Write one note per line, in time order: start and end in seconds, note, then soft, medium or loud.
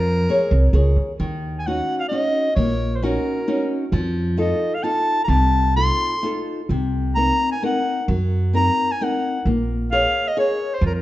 0.00 0.27 F2 medium
0.00 0.26 F3 medium
0.00 0.71 A#4 medium
0.29 0.65 G#4 soft
0.29 0.65 A#4 soft
0.29 0.66 C#5 soft
0.51 0.71 C2 medium
0.73 0.95 C#2 medium
0.73 1.11 G#4 soft
0.73 1.11 A#4 soft
0.73 1.11 C#5 soft
0.96 1.17 D#2 medium
1.20 1.80 D#2 medium
1.20 1.64 D#3 medium
1.59 1.68 G#5 medium
1.67 2.03 C#4 soft
1.67 2.03 D#4 soft
1.67 2.04 F#4 soft
1.67 1.97 F#5 medium
1.97 2.08 F5 medium
1.97 2.01 F#5 soft
2.09 2.48 C#4 soft
2.09 2.48 D#4 soft
2.09 2.52 D#5 medium
2.13 2.49 F#4 soft
2.56 3.16 A#1 medium
2.56 3.02 A#3 soft
2.56 2.97 C#5 medium
2.96 3.05 C5 soft
3.02 3.39 C#4 soft
3.02 3.39 D#4 soft
3.02 3.40 F#4 soft
3.02 3.72 A#4 medium
3.48 3.84 C#4 soft
3.48 3.84 D#4 soft
3.48 3.84 F#4 soft
3.92 4.51 F2 medium
3.92 4.37 F3 medium
4.37 4.74 D#4 soft
4.37 4.74 F4 soft
4.37 4.75 A4 soft
4.37 4.76 D#5 medium
4.75 4.85 F5 medium
4.83 5.20 D#4 soft
4.83 5.20 F4 soft
4.83 5.20 A4 soft
4.83 5.23 A5 medium
5.24 5.89 C2 medium
5.24 5.31 A#5 medium
5.29 5.74 C3 medium
5.29 5.75 A5 medium
5.76 6.13 D#4 soft
5.76 6.13 F4 soft
5.76 6.14 A4 medium
5.76 6.43 C6 medium
6.23 6.60 D#4 soft
6.23 6.60 F4 soft
6.23 6.61 A4 soft
6.69 7.29 C2 medium
6.69 7.15 C3 medium
7.15 7.53 C4 soft
7.15 7.53 D#4 soft
7.15 7.54 A#4 soft
7.15 7.48 A#5 medium
7.52 7.62 G#5 medium
7.63 7.99 C4 soft
7.63 7.99 D#4 soft
7.63 8.00 A#4 soft
7.63 8.07 F#5 medium
8.08 8.67 F#2 medium
8.08 8.53 F#3 soft
8.53 8.90 C4 soft
8.53 8.91 D#4 soft
8.53 8.91 A#4 soft
8.53 8.93 A#5 medium
8.92 9.05 G#5 medium
9.01 9.37 C4 soft
9.01 9.37 D#4 soft
9.01 9.37 A#4 soft
9.01 9.47 F#5 medium
9.45 10.05 A#1 medium
9.45 9.90 A#3 medium
9.92 10.28 G#4 soft
9.92 10.28 A#4 soft
9.92 10.29 C#5 soft
9.92 10.30 F5 medium
10.28 10.38 D#5 medium
10.37 10.74 G#4 soft
10.37 10.74 A#4 soft
10.37 10.74 C#5 soft
10.37 10.76 C#5 medium
10.74 10.84 C5 medium
10.81 11.02 F2 medium
10.81 11.02 F3 medium
10.86 10.92 A#4 medium
10.95 11.00 A#4 soft